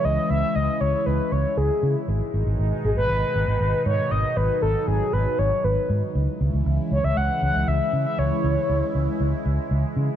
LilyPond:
<<
  \new Staff \with { instrumentName = "Soft synth lead" } { \time 4/4 \key cis \minor \tempo 4 = 118 dis''8 e''8 dis''8 cis''8 b'8 cis''8 gis'8. r16 | r4. gis'16 b'4.~ b'16 cis''8 | dis''8 b'8 a'8 gis'8 b'8 cis''8 b'8. r16 | r4. cis''16 e''16 fis''8 fis''8 e''8. e''16 |
cis''2 r2 | }
  \new Staff \with { instrumentName = "Analog synth pad" } { \clef bass \time 4/4 \key cis \minor << { <cis e e'>1 | <b, dis dis'>1~ | <b, dis dis'>1 | <cis e e'>1~ |
<cis e e'>1 | } \\ { gis1 | gis1 | fis1 | gis1~ |
gis1 | } >> }
  \new Staff \with { instrumentName = "Fingered electric bass" } { \clef bass \time 4/4 \key cis \minor cis,16 r16 cis,16 r16 cis,16 r16 cis,16 r16 cis,16 r16 cis,16 r16 cis,16 r16 cis16 r16 | gis,,16 r16 gis,,16 gis,,16 gis,,16 r16 gis,,16 gis,,16 gis,,16 r16 gis,,16 gis,,16 gis,,16 r16 gis,16 r16 | gis,,16 r16 gis,,16 r16 gis,,16 r16 gis,,16 r16 gis,,16 r16 gis,,16 r16 gis,,16 r16 gis,16 r16 | cis,16 r16 cis,16 cis,16 cis,16 r16 cis,16 cis,16 cis,16 r16 cis,16 cis,16 cis,16 r16 cis16 r16 |
cis,16 r16 cis,16 r16 cis,16 r16 cis,16 r16 cis,16 r16 cis,16 r16 cis,16 r16 cis16 r16 | }
>>